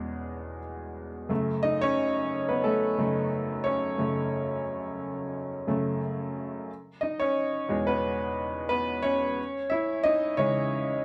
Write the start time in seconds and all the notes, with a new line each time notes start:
Already playing: E2 B2 G#3 G#4
1.29 F#2 C#3 A3
1.63 D#4 D#5
1.81 C#4 C#5
2.49 B3 B4
2.64 A3 A4
2.98 F#2 C#3 A3
3.64 C#4 C#5
3.98 F#2 C#3 A3
5.67 F#2 C#3 A3
7.01 D#4 D#5
7.20 C#4 C#5
7.68 E2 B2 G#3
7.87 B3 B4
8.69 B3 B4
9.02 C#4 C#5
9.70 E4 E5
10.04 D#4 D#5
10.37 C#3 E3 G#3 C#4 C#5